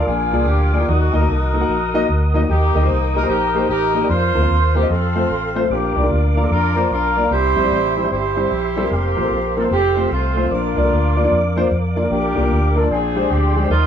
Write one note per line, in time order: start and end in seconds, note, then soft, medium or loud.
0.00 4.87 A#4 medium
0.00 0.86 F5 medium
0.00 0.07 F5 medium
0.00 0.86 D6 medium
0.06 0.33 A#1 loud
0.06 0.69 A#2 medium
0.06 0.84 D4 medium
0.06 0.84 F4 medium
0.06 0.47 G#4 medium
0.06 0.87 G#5 medium
0.33 0.47 C2 medium
0.33 0.43 A#3 medium
0.33 0.43 F4 medium
0.33 0.44 G#4 medium
0.33 0.44 D5 medium
0.47 0.82 D2 medium
0.47 0.71 G4 medium
0.73 0.78 A#3 medium
0.73 0.79 F4 medium
0.73 0.87 G4 medium
0.73 0.79 G#4 medium
0.73 0.79 D5 medium
0.81 0.88 A#3 medium
0.81 0.88 F4 medium
0.81 0.88 G#4 soft
0.81 0.88 D5 medium
0.88 1.10 D#2 medium
0.88 1.50 D#3 medium
0.88 1.65 A#3 medium
0.88 1.28 D#4 medium
0.88 1.14 F#4 medium
0.88 4.07 D#5 medium
0.88 2.48 F#5 soft
0.88 4.07 D#6 medium
1.13 1.26 D2 medium
1.13 1.18 A#3 medium
1.13 1.19 D#4 medium
1.13 1.19 F#4 medium
1.13 1.27 A#4 medium
1.13 1.19 D#5 medium
1.20 1.33 A#3 medium
1.20 1.33 D#4 medium
1.20 1.34 F#4 medium
1.20 1.34 D#5 medium
1.28 1.62 C2 medium
1.28 2.31 D#4 medium
1.28 2.31 F#4 medium
1.28 2.31 A#4 medium
1.53 1.59 A#3 medium
1.53 1.59 D#4 medium
1.53 1.59 F#4 medium
1.53 1.59 A4 medium
1.61 1.74 A#3 medium
1.61 1.74 D#4 medium
1.61 1.74 F#4 medium
1.61 1.74 F#5 medium
1.68 2.03 A#1 medium
1.94 2.04 A#3 medium
1.94 2.05 D#4 medium
1.94 2.05 F#4 medium
1.94 2.05 D#5 loud
2.09 2.43 D2 medium
2.34 2.39 A#3 medium
2.34 2.40 D#4 medium
2.34 2.40 F#4 medium
2.34 2.40 D#5 medium
2.41 2.49 A#3 medium
2.41 2.49 D#4 medium
2.41 2.49 F#4 medium
2.41 2.49 D#5 medium
2.49 2.71 D#2 medium
2.49 3.11 D#3 medium
2.49 3.26 A#3 medium
2.49 3.26 D#4 medium
2.49 2.87 G4 medium
2.49 4.09 G5 medium
2.75 2.87 D2 medium
2.75 2.80 A#3 medium
2.75 2.80 D#4 medium
2.75 2.80 G4 medium
2.75 2.81 D#5 medium
2.82 2.95 A#3 medium
2.82 2.95 D#4 medium
2.82 2.95 G4 medium
2.82 2.96 C5 medium
2.89 3.23 C2 medium
3.15 3.20 A#3 medium
3.15 3.20 D#4 medium
3.15 3.21 G4 medium
3.15 3.28 A#4 medium
3.15 3.21 D#5 medium
3.22 3.35 A#3 medium
3.22 3.35 D#4 medium
3.22 3.36 G4 medium
3.22 3.36 C5 medium
3.29 3.63 A#1 medium
3.29 3.69 D#4 medium
3.29 3.69 G4 medium
3.29 3.67 A#4 medium
3.55 3.65 A#3 medium
3.55 3.66 D#4 medium
3.55 3.66 G4 medium
3.55 3.66 C5 medium
3.69 4.04 A1 medium
3.69 4.07 D#4 medium
3.69 4.07 G4 medium
3.69 4.07 A#4 loud
3.94 4.00 A#3 medium
3.94 4.00 D#4 medium
3.94 4.00 G4 medium
3.94 4.01 D#5 medium
4.02 4.09 A#3 medium
4.02 4.09 D#4 medium
4.02 4.10 G4 medium
4.02 4.10 D5 medium
4.09 4.32 F2 loud
4.09 4.86 F4 medium
4.09 5.69 C5 medium
4.09 4.76 C5 loud
4.09 7.28 F5 soft
4.09 5.69 C6 medium
4.34 4.48 D2 medium
4.34 4.40 A#3 medium
4.34 4.40 C4 medium
4.34 4.41 F4 medium
4.34 4.41 C5 medium
4.42 4.55 A#3 medium
4.42 4.55 C4 medium
4.42 4.56 F4 medium
4.42 4.56 C5 medium
4.50 4.84 D#2 medium
4.75 4.80 A#3 medium
4.75 4.81 C4 medium
4.75 4.81 F4 medium
4.75 4.90 G4 medium
4.75 4.81 C5 medium
4.82 4.90 A#3 medium
4.82 4.90 C4 medium
4.82 4.90 F4 medium
4.82 4.90 D#5 medium
4.90 5.24 F2 medium
4.90 5.66 C4 medium
4.90 5.66 F4 medium
4.90 5.31 A4 medium
4.90 5.70 A4 medium
5.15 5.26 A3 medium
5.15 5.26 C4 medium
5.15 5.26 F4 medium
5.15 5.27 C5 medium
5.30 5.64 A1 medium
5.55 5.61 A3 medium
5.55 5.61 C4 medium
5.55 5.61 F4 medium
5.55 5.62 C5 medium
5.63 5.71 A3 medium
5.63 5.71 C4 medium
5.63 5.71 F4 soft
5.63 5.71 C5 medium
5.70 5.92 A#1 medium
5.70 6.33 A#2 medium
5.70 6.47 A#3 medium
5.70 6.47 D4 medium
5.70 6.08 G4 medium
5.70 7.30 A#4 medium
5.70 7.30 D5 soft
5.70 7.30 D6 medium
5.96 6.08 C2 medium
5.96 6.01 A#3 medium
5.96 6.02 D4 medium
5.96 6.02 F4 medium
5.96 6.02 D5 medium
6.03 6.16 A#3 medium
6.03 6.16 D4 medium
6.03 6.17 F4 medium
6.03 6.17 G4 medium
6.10 6.44 D2 medium
6.36 6.41 A#3 medium
6.36 6.42 D4 medium
6.36 6.42 F4 medium
6.36 6.50 A#4 medium
6.36 6.42 F5 medium
6.43 6.56 A#3 medium
6.43 6.56 D4 medium
6.43 6.56 F4 medium
6.43 6.57 A4 medium
6.51 6.85 F2 medium
6.51 6.91 D4 medium
6.51 6.91 F4 medium
6.51 6.89 A#4 medium
6.76 6.86 A#3 medium
6.76 6.87 D4 medium
6.76 6.87 F4 medium
6.76 6.87 C5 medium
6.91 7.25 B1 medium
6.91 7.29 D4 medium
6.91 7.29 F4 medium
6.91 7.29 A#4 medium
7.17 7.22 A#3 medium
7.17 7.22 D4 medium
7.17 7.22 F4 medium
7.17 7.22 D5 medium
7.24 7.31 A#3 medium
7.24 7.31 D4 medium
7.24 7.31 F4 medium
7.24 7.31 F5 medium
7.31 7.53 C2 loud
7.31 7.93 C3 medium
7.31 8.07 E4 medium
7.31 8.90 G4 medium
7.31 8.07 G4 medium
7.31 10.48 C5 soft
7.31 7.97 C5 loud
7.31 8.90 E5 soft
7.31 10.48 C6 medium
7.56 7.69 A#1 medium
7.56 7.62 G3 medium
7.56 7.62 C4 medium
7.56 7.62 E4 medium
7.56 7.62 C5 medium
7.63 7.76 G3 medium
7.63 7.77 C4 medium
7.63 7.77 E4 medium
7.63 7.77 D5 medium
7.71 8.05 A1 medium
7.96 8.02 G3 medium
7.96 8.02 C4 medium
7.96 8.02 E4 medium
7.96 8.02 C5 medium
7.96 8.11 C5 medium
8.03 8.17 G3 medium
8.03 8.17 C4 medium
8.03 8.17 E4 medium
8.03 8.17 C5 medium
8.11 8.45 G1 medium
8.11 8.87 E4 medium
8.11 8.87 G4 medium
8.11 8.49 C5 medium
8.37 8.47 G3 medium
8.37 8.47 C4 medium
8.37 8.47 E4 medium
8.37 8.47 C5 medium
8.51 8.85 A#1 medium
8.77 8.82 G3 medium
8.77 8.82 C4 medium
8.77 8.82 E4 medium
8.77 8.82 A4 medium
8.83 8.91 G3 medium
8.83 8.91 C4 medium
8.83 8.91 E4 medium
8.83 8.91 A#4 medium
8.90 9.13 F1 loud
8.90 9.67 A#3 medium
8.90 9.67 C4 medium
8.90 9.53 G4 loud
8.90 9.70 A#4 medium
8.90 10.49 F5 medium
9.17 9.29 A1 medium
9.17 9.22 A#3 medium
9.17 9.22 C4 medium
9.17 9.22 F4 medium
9.17 9.22 C5 medium
9.23 9.36 A#3 medium
9.23 9.37 C4 medium
9.23 9.37 F4 medium
9.23 9.37 A4 medium
9.31 9.65 A#1 medium
9.57 9.62 A#3 medium
9.57 9.62 C4 medium
9.57 9.62 F4 medium
9.57 9.64 A4 medium
9.57 9.62 A#4 medium
9.63 9.71 A#3 medium
9.63 9.71 C4 medium
9.63 9.71 F4 medium
9.63 9.71 C5 medium
9.71 10.05 F1 medium
9.71 10.11 C4 medium
9.71 10.09 G4 medium
9.71 10.50 A4 medium
9.97 10.07 A3 medium
9.97 10.07 C4 medium
9.97 10.07 F4 medium
9.97 10.07 C5 medium
10.11 10.45 C2 medium
10.11 10.49 A3 medium
10.11 10.49 C4 medium
10.11 10.52 F4 medium
10.36 10.42 A3 medium
10.36 10.42 C4 medium
10.36 10.42 F4 medium
10.36 10.42 C5 medium
10.44 10.51 A3 medium
10.44 10.51 C4 medium
10.44 10.51 F4 medium
10.44 10.51 C5 medium
10.51 10.73 A#1 medium
10.51 11.13 A#2 medium
10.51 11.67 A#3 medium
10.51 11.68 D4 medium
10.51 11.68 F4 medium
10.51 12.88 A#4 medium
10.51 13.68 D5 soft
10.51 12.88 F5 soft
10.51 12.88 D6 medium
10.77 10.89 C2 medium
10.77 10.82 A#3 medium
10.77 10.82 D4 medium
10.77 10.82 F4 medium
10.77 10.82 D5 medium
10.84 10.97 A#3 medium
10.84 10.97 D4 medium
10.84 10.97 F4 medium
10.84 10.97 A4 medium
10.91 11.25 D2 medium
11.16 11.22 A#3 medium
11.16 11.22 D4 medium
11.16 11.22 F4 medium
11.16 11.22 D5 medium
11.24 11.37 A#3 medium
11.24 11.37 D4 medium
11.24 11.37 F4 medium
11.24 11.37 D5 medium
11.31 11.65 F2 medium
11.56 11.67 A#3 medium
11.56 11.67 D4 medium
11.56 11.67 F4 medium
11.56 11.67 C5 medium
11.71 12.05 F2 medium
11.96 12.01 A#3 medium
11.96 12.02 D4 medium
11.96 12.02 F4 medium
11.96 12.02 D5 medium
12.03 12.16 A#3 medium
12.03 12.16 D4 medium
12.03 12.16 F4 soft
12.03 12.17 A#4 medium
12.11 12.33 A#1 loud
12.11 12.73 A#2 medium
12.11 12.87 A#3 medium
12.11 12.87 D4 medium
12.11 12.73 G4 medium
12.35 12.49 C2 medium
12.35 12.41 A#3 medium
12.35 12.41 D4 medium
12.35 12.42 F4 medium
12.35 12.42 G4 medium
12.43 12.56 A#3 medium
12.43 12.56 D4 medium
12.43 12.56 F4 medium
12.43 12.57 D5 medium
12.50 12.85 D2 medium
12.76 12.81 A#3 medium
12.76 12.81 D4 medium
12.76 12.82 F4 medium
12.76 12.91 A4 medium
12.76 12.82 A#4 medium
12.83 12.90 A#3 medium
12.83 12.90 D4 medium
12.83 12.91 F4 medium
12.83 12.91 D5 medium
12.90 13.24 A#1 medium
12.90 13.52 A#2 medium
12.90 13.67 C4 medium
12.90 13.67 D4 medium
12.90 13.70 G#4 medium
12.90 13.31 G#4 medium
12.90 13.87 G5 medium
12.90 13.70 C6 medium
13.16 13.26 G#3 medium
13.16 13.27 D4 medium
13.16 13.27 G4 medium
13.16 13.27 C5 medium
13.30 13.65 D2 medium
13.30 13.56 G4 medium
13.56 13.61 G#3 medium
13.56 13.61 D4 medium
13.56 13.61 G4 medium
13.56 13.70 G4 medium
13.56 13.62 D5 medium
13.62 13.70 G#3 medium
13.62 13.70 D4 medium
13.62 13.70 G4 soft
13.62 13.71 C5 medium
13.70 13.87 D#2 loud
13.70 13.87 D#3 medium
13.70 13.87 A#3 medium
13.70 13.87 F4 medium
13.70 13.87 A#4 medium
13.70 13.87 D#5 soft
13.70 13.87 D#6 medium